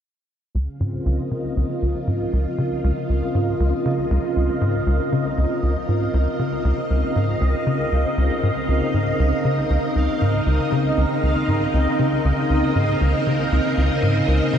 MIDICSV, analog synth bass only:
0, 0, Header, 1, 2, 480
1, 0, Start_track
1, 0, Key_signature, -5, "major"
1, 0, Tempo, 508475
1, 520, Time_signature, 4, 2, 24, 8
1, 13767, End_track
2, 0, Start_track
2, 0, Title_t, "Analog synth bass"
2, 0, Program_c, 0, 38
2, 516, Note_on_c, 0, 37, 76
2, 643, Note_off_c, 0, 37, 0
2, 759, Note_on_c, 0, 44, 73
2, 947, Note_off_c, 0, 44, 0
2, 998, Note_on_c, 0, 37, 91
2, 1124, Note_off_c, 0, 37, 0
2, 1239, Note_on_c, 0, 49, 66
2, 1427, Note_off_c, 0, 49, 0
2, 1478, Note_on_c, 0, 37, 86
2, 1554, Note_off_c, 0, 37, 0
2, 1719, Note_on_c, 0, 37, 69
2, 1844, Note_off_c, 0, 37, 0
2, 1957, Note_on_c, 0, 44, 71
2, 2146, Note_off_c, 0, 44, 0
2, 2198, Note_on_c, 0, 37, 91
2, 2324, Note_off_c, 0, 37, 0
2, 2437, Note_on_c, 0, 49, 76
2, 2626, Note_off_c, 0, 49, 0
2, 2680, Note_on_c, 0, 37, 99
2, 2755, Note_off_c, 0, 37, 0
2, 2919, Note_on_c, 0, 37, 68
2, 3045, Note_off_c, 0, 37, 0
2, 3159, Note_on_c, 0, 44, 72
2, 3347, Note_off_c, 0, 44, 0
2, 3397, Note_on_c, 0, 37, 86
2, 3523, Note_off_c, 0, 37, 0
2, 3639, Note_on_c, 0, 49, 71
2, 3827, Note_off_c, 0, 49, 0
2, 3875, Note_on_c, 0, 37, 91
2, 3952, Note_off_c, 0, 37, 0
2, 4118, Note_on_c, 0, 37, 70
2, 4244, Note_off_c, 0, 37, 0
2, 4355, Note_on_c, 0, 44, 78
2, 4545, Note_off_c, 0, 44, 0
2, 4593, Note_on_c, 0, 37, 91
2, 4722, Note_off_c, 0, 37, 0
2, 4836, Note_on_c, 0, 49, 69
2, 5025, Note_off_c, 0, 49, 0
2, 5075, Note_on_c, 0, 37, 90
2, 5152, Note_off_c, 0, 37, 0
2, 5313, Note_on_c, 0, 37, 72
2, 5441, Note_off_c, 0, 37, 0
2, 5555, Note_on_c, 0, 44, 69
2, 5745, Note_off_c, 0, 44, 0
2, 5793, Note_on_c, 0, 37, 97
2, 5922, Note_off_c, 0, 37, 0
2, 6035, Note_on_c, 0, 49, 69
2, 6225, Note_off_c, 0, 49, 0
2, 6273, Note_on_c, 0, 37, 94
2, 6351, Note_off_c, 0, 37, 0
2, 6516, Note_on_c, 0, 37, 70
2, 6643, Note_off_c, 0, 37, 0
2, 6757, Note_on_c, 0, 44, 67
2, 6946, Note_off_c, 0, 44, 0
2, 6996, Note_on_c, 0, 37, 90
2, 7123, Note_off_c, 0, 37, 0
2, 7236, Note_on_c, 0, 49, 75
2, 7426, Note_off_c, 0, 49, 0
2, 7477, Note_on_c, 0, 37, 70
2, 7603, Note_off_c, 0, 37, 0
2, 7717, Note_on_c, 0, 37, 92
2, 7844, Note_off_c, 0, 37, 0
2, 7959, Note_on_c, 0, 44, 71
2, 8034, Note_off_c, 0, 44, 0
2, 8197, Note_on_c, 0, 37, 75
2, 8323, Note_off_c, 0, 37, 0
2, 8439, Note_on_c, 0, 44, 73
2, 8627, Note_off_c, 0, 44, 0
2, 8679, Note_on_c, 0, 37, 97
2, 8804, Note_off_c, 0, 37, 0
2, 8918, Note_on_c, 0, 49, 70
2, 9106, Note_off_c, 0, 49, 0
2, 9158, Note_on_c, 0, 37, 88
2, 9234, Note_off_c, 0, 37, 0
2, 9398, Note_on_c, 0, 37, 72
2, 9524, Note_off_c, 0, 37, 0
2, 9642, Note_on_c, 0, 44, 69
2, 9828, Note_off_c, 0, 44, 0
2, 9877, Note_on_c, 0, 37, 90
2, 10003, Note_off_c, 0, 37, 0
2, 10120, Note_on_c, 0, 49, 77
2, 10307, Note_off_c, 0, 49, 0
2, 10360, Note_on_c, 0, 37, 93
2, 10435, Note_off_c, 0, 37, 0
2, 10600, Note_on_c, 0, 37, 72
2, 10725, Note_off_c, 0, 37, 0
2, 10837, Note_on_c, 0, 44, 69
2, 11026, Note_off_c, 0, 44, 0
2, 11079, Note_on_c, 0, 37, 89
2, 11205, Note_off_c, 0, 37, 0
2, 11320, Note_on_c, 0, 49, 72
2, 11508, Note_off_c, 0, 49, 0
2, 11562, Note_on_c, 0, 37, 96
2, 11636, Note_off_c, 0, 37, 0
2, 11798, Note_on_c, 0, 37, 71
2, 11924, Note_off_c, 0, 37, 0
2, 12040, Note_on_c, 0, 44, 75
2, 12227, Note_off_c, 0, 44, 0
2, 12282, Note_on_c, 0, 37, 93
2, 12406, Note_off_c, 0, 37, 0
2, 12523, Note_on_c, 0, 49, 71
2, 12709, Note_off_c, 0, 49, 0
2, 12762, Note_on_c, 0, 37, 92
2, 12836, Note_off_c, 0, 37, 0
2, 13003, Note_on_c, 0, 37, 79
2, 13126, Note_off_c, 0, 37, 0
2, 13240, Note_on_c, 0, 44, 71
2, 13427, Note_off_c, 0, 44, 0
2, 13479, Note_on_c, 0, 37, 93
2, 13605, Note_off_c, 0, 37, 0
2, 13718, Note_on_c, 0, 49, 71
2, 13767, Note_off_c, 0, 49, 0
2, 13767, End_track
0, 0, End_of_file